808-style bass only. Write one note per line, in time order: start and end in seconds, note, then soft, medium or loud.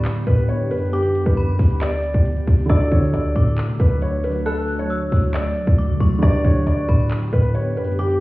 0.00 0.25 A2 loud
0.27 0.72 A2 loud
0.71 1.23 F#2 loud
1.26 1.58 F#2 loud
1.59 2.12 D2 loud
2.14 2.46 D2 loud
2.47 2.69 D2 loud
2.70 2.91 D2 loud
2.92 3.13 D3 loud
3.14 3.35 C#2 loud
3.36 3.70 A2 loud
3.69 3.79 D3 loud
3.80 5.08 D2 loud
5.12 5.44 D2 loud
5.67 5.91 D2 loud
5.89 6.00 D3 loud
6.00 6.22 D2 loud
6.22 6.44 D2 loud
6.45 6.66 D2 loud
6.67 6.88 D2 loud
6.89 7.31 A2 loud
7.33 7.78 A2 loud
7.77 8.20 F#2 loud